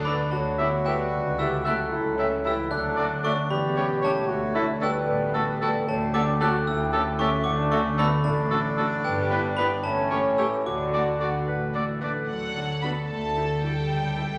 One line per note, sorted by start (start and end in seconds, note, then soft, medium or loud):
0.00 0.20 D2 medium
0.00 0.32 D3 medium
0.00 0.36 A3 soft
0.00 0.29 D4 medium
0.05 0.19 B3 medium
0.05 1.15 D4 medium
0.05 0.15 D4 medium
0.05 0.15 F#4 medium
0.05 0.36 F#4 medium
0.05 0.16 A4 medium
0.05 0.15 A4 medium
0.05 0.15 D5 medium
0.05 0.34 D5 medium
0.05 0.31 B5 medium
0.31 0.99 D2 medium
0.31 1.00 D2 medium
0.31 1.15 D3 medium
0.31 0.86 A3 medium
0.31 1.94 F#4 medium
0.31 0.89 C#5 medium
0.31 0.82 A5 medium
0.58 1.15 B3 medium
0.58 0.69 B3 medium
0.58 0.68 E4 medium
0.58 0.68 G4 medium
0.58 0.68 G4 soft
0.58 0.68 E5 medium
0.85 1.39 G3 medium
0.85 0.95 B3 medium
0.85 0.94 E4 medium
0.85 2.74 E4 medium
0.85 0.95 G4 medium
0.85 0.96 G4 medium
0.85 1.42 B4 medium
0.85 0.95 E5 medium
0.85 1.35 G5 medium
1.13 1.79 C#2 medium
1.13 2.74 C#3 medium
1.38 1.53 E3 medium
1.38 3.53 A3 medium
1.38 1.48 A3 medium
1.38 1.46 E4 medium
1.38 1.66 G4 medium
1.38 1.48 G4 medium
1.38 1.49 A4 medium
1.38 1.48 E5 medium
1.38 1.64 E6 medium
1.65 2.44 F#3 medium
1.65 1.75 A3 medium
1.65 1.74 E4 medium
1.65 1.74 G4 medium
1.65 2.45 G4 medium
1.65 1.75 A4 medium
1.65 2.44 A4 medium
1.65 1.74 E5 medium
1.65 2.41 F#6 medium
1.92 2.58 C#2 medium
1.92 2.17 E4 medium
1.92 3.53 A4 medium
2.17 2.28 A3 medium
2.17 2.46 C#4 medium
2.17 2.27 E4 medium
2.17 2.27 G4 medium
2.17 2.28 A4 medium
2.17 2.29 E5 medium
2.17 2.74 E5 medium
2.45 2.72 E3 medium
2.45 2.54 A3 medium
2.45 2.53 E4 medium
2.45 2.70 E4 medium
2.45 2.52 G4 medium
2.45 2.74 G4 medium
2.45 2.55 G4 medium
2.45 2.55 A4 medium
2.45 2.55 E5 medium
2.45 2.71 E6 medium
2.71 3.37 D2 medium
2.71 3.53 D3 medium
2.71 3.24 F#3 medium
2.71 3.49 D4 medium
2.71 3.23 A4 medium
2.71 3.20 F#6 medium
2.96 3.06 A3 medium
2.96 3.06 D4 soft
2.96 3.24 D4 medium
2.96 3.07 F#4 medium
2.96 3.08 A4 medium
2.96 3.06 D5 medium
3.23 3.33 A3 medium
3.23 3.36 C#4 medium
3.23 3.32 D4 medium
3.23 3.53 D4 soft
3.23 3.33 F#4 medium
3.23 3.53 F#4 medium
3.23 3.33 A4 medium
3.23 3.33 D5 medium
3.23 3.31 E5 medium
3.23 3.49 C#6 loud
3.50 4.16 E1 medium
3.50 4.16 E2 medium
3.50 4.32 E3 medium
3.50 4.02 B3 medium
3.50 4.30 G4 medium
3.50 4.02 D5 medium
3.50 3.99 B5 medium
3.76 3.86 G3 medium
3.76 3.84 C#4 medium
3.76 4.03 C#4 medium
3.76 3.85 G4 medium
3.76 3.86 G4 medium
3.76 3.86 C#5 medium
4.02 4.12 G3 medium
4.02 4.82 A3 medium
4.02 4.10 C#4 medium
4.02 4.32 C#4 medium
4.02 4.13 G4 medium
4.02 4.32 G4 medium
4.02 4.12 G4 medium
4.02 4.12 C#5 medium
4.02 4.80 C#5 medium
4.02 4.79 A5 medium
4.29 4.95 D2 medium
4.29 5.87 D3 medium
4.29 4.54 F#4 medium
4.55 4.64 A3 medium
4.55 4.63 D4 medium
4.55 5.91 D4 medium
4.55 4.67 E4 medium
4.55 4.64 F#4 medium
4.55 4.65 F#4 medium
4.55 4.64 A4 medium
4.81 5.60 G3 medium
4.81 4.90 A3 medium
4.81 4.89 D4 medium
4.81 4.93 D4 medium
4.81 4.89 F#4 medium
4.81 4.92 F#4 medium
4.81 4.91 A4 medium
4.81 5.61 A4 medium
4.81 5.60 B4 medium
4.81 5.58 G5 loud
5.08 5.75 A1 medium
5.08 5.75 A2 medium
5.08 5.89 B3 medium
5.08 5.91 D5 medium
5.34 5.43 A3 medium
5.34 5.43 D4 medium
5.34 5.43 F#4 medium
5.34 5.45 F#4 medium
5.34 5.44 A4 medium
5.34 5.91 F#5 medium
5.61 5.74 G3 medium
5.61 5.70 A3 medium
5.61 5.70 D4 medium
5.61 5.71 F#4 medium
5.61 5.69 F#4 medium
5.61 5.71 A4 medium
5.61 6.40 A4 medium
5.61 5.67 B4 medium
5.61 5.87 G5 medium
5.87 6.53 D2 medium
5.87 6.54 D2 loud
5.87 7.45 D3 medium
5.87 7.18 A3 medium
5.87 6.14 A3 medium
5.87 5.94 C#5 medium
5.87 6.13 A5 loud
6.13 6.23 A3 medium
6.13 6.22 C#4 medium
6.13 7.48 C#4 medium
6.13 6.26 D4 medium
6.13 6.23 G4 medium
6.13 6.22 G4 medium
6.13 6.24 A4 medium
6.13 6.21 F#5 medium
6.13 6.39 D6 loud
6.40 6.49 A3 medium
6.40 6.49 C#4 medium
6.40 6.53 F#4 loud
6.40 6.50 G4 medium
6.40 6.49 G4 medium
6.40 6.49 A4 medium
6.40 7.19 A4 medium
6.40 6.48 A5 loud
6.40 6.66 F#6 loud
6.66 7.32 D2 medium
6.66 7.33 D2 medium
6.66 7.19 E4 medium
6.66 7.48 C#5 medium
6.66 7.19 G5 medium
6.66 7.16 E6 medium
6.92 7.02 A3 medium
6.92 7.01 C#4 medium
6.92 7.02 G4 medium
6.92 7.00 G4 medium
6.92 7.02 A4 medium
6.92 7.48 G5 medium
7.19 7.28 A3 medium
7.19 7.28 C#4 medium
7.19 7.32 C#4 medium
7.19 7.28 G4 medium
7.19 7.27 G4 medium
7.19 7.97 A4 medium
7.19 7.30 A4 medium
7.19 7.44 E5 loud
7.19 7.44 C#6 loud
7.44 8.12 D2 medium
7.44 8.12 D2 loud
7.44 9.07 D3 medium
7.44 8.20 A3 loud
7.44 7.73 D4 loud
7.44 7.51 F#5 medium
7.44 7.69 D6 loud
7.71 7.80 A3 medium
7.71 7.99 C#4 medium
7.71 7.80 D4 medium
7.71 9.07 D4 medium
7.71 7.81 F#4 medium
7.71 7.80 F#4 medium
7.71 7.81 A4 medium
7.71 7.77 E5 loud
7.71 7.96 C#6 loud
7.97 8.07 A3 medium
7.97 8.11 B3 medium
7.97 8.06 D4 medium
7.97 8.05 F#4 medium
7.97 8.08 F#4 medium
7.97 8.07 A4 medium
7.97 8.24 D5 medium
7.97 8.23 B5 loud
8.24 8.91 A1 medium
8.24 8.91 A2 loud
8.24 8.77 A3 medium
8.24 9.81 D4 loud
8.24 8.77 D5 medium
8.24 9.07 D5 medium
8.24 8.74 A5 medium
8.50 8.59 A3 medium
8.50 8.61 D4 medium
8.50 8.60 F#4 medium
8.50 8.59 F#4 medium
8.50 8.60 A4 medium
8.50 9.07 F#5 medium
8.77 8.85 A3 medium
8.77 8.86 D4 medium
8.77 8.86 F#4 medium
8.77 8.88 F#4 medium
8.77 8.87 A4 medium
9.04 9.71 G1 medium
9.04 9.71 G2 medium
9.04 9.87 G2 medium
9.04 9.54 G3 loud
9.04 9.54 B4 medium
9.04 9.54 G5 loud
9.31 9.39 B3 medium
9.31 9.87 B3 medium
9.31 9.40 E4 medium
9.31 9.39 E4 medium
9.31 9.39 G4 medium
9.31 9.40 B4 medium
9.57 9.70 B3 loud
9.57 9.66 B3 medium
9.57 10.68 E4 medium
9.57 9.68 E4 medium
9.57 9.67 E4 medium
9.57 9.66 G4 medium
9.57 10.39 G4 medium
9.57 9.67 B4 medium
9.57 9.64 D5 medium
9.57 9.82 B5 loud
9.83 10.52 A1 medium
9.83 10.52 A2 medium
9.83 10.68 A2 medium
9.83 10.37 A3 loud
9.83 10.64 C#4 medium
9.83 10.38 C#5 medium
9.83 10.34 A5 loud
10.11 10.19 A3 medium
10.11 13.12 A3 medium
10.11 10.20 C#4 medium
10.11 10.19 G4 medium
10.11 10.21 G4 medium
10.11 10.21 C#5 medium
10.37 10.65 E3 medium
10.37 10.46 A3 medium
10.37 10.68 C#4 medium
10.37 10.47 C#4 medium
10.37 10.46 G4 medium
10.37 10.49 G4 medium
10.37 10.46 G4 medium
10.37 10.69 G4 medium
10.37 10.48 C#5 medium
10.37 10.64 E6 medium
10.65 11.34 D2 medium
10.65 11.98 D3 medium
10.65 11.34 D3 medium
10.65 12.28 D3 medium
10.65 11.85 F#4 medium
10.65 11.99 F#4 medium
10.65 11.98 D6 medium
10.93 11.01 A3 medium
10.93 12.55 D4 medium
10.93 11.01 D4 medium
10.93 11.02 F#4 medium
10.93 11.04 F#4 medium
10.93 11.03 D5 medium
11.20 11.28 A3 medium
11.20 11.29 D4 medium
11.20 11.31 F#4 medium
11.20 11.29 F#4 medium
11.20 12.01 A4 medium
11.20 11.30 D5 medium
11.47 12.15 A1 medium
11.47 12.15 A2 medium
11.47 11.76 B4 medium
11.47 13.91 D5 medium
11.74 11.83 A3 medium
11.74 11.82 D4 medium
11.74 11.83 F#4 medium
11.74 12.00 A4 medium
11.74 11.85 D5 medium
11.74 13.12 F#5 medium
12.01 12.10 A3 medium
12.01 12.09 D4 medium
12.01 12.09 F#4 medium
12.01 13.12 A4 medium
12.01 12.28 B4 medium
12.01 12.13 D5 medium
12.28 12.96 D2 medium
12.28 13.09 D3 medium
12.28 12.79 F#3 medium
12.28 14.38 A4 medium
12.28 12.79 F#5 medium
12.56 12.82 D4 medium
12.56 12.65 D4 medium
12.56 12.65 F#4 medium
12.82 12.91 B3 medium
12.82 13.91 D4 soft
12.82 12.92 D4 medium
12.82 12.92 F#4 medium
12.82 13.12 F#4 medium
12.82 12.90 B5 medium
13.09 13.76 D2 medium
13.09 13.92 D3 medium
13.09 13.61 A3 medium
13.09 13.61 A5 medium
13.36 13.92 B3 medium
13.36 13.44 E4 medium
13.36 13.44 G4 medium
13.62 14.38 G3 medium
13.62 14.38 E4 soft
13.62 13.71 E4 soft
13.62 13.72 G4 medium
13.62 14.38 G4 medium
13.62 14.38 G5 medium
13.89 14.38 C#2 medium
13.89 14.38 C#3 medium
14.16 14.38 A3 medium
14.16 14.24 E4 medium
14.16 14.24 A4 medium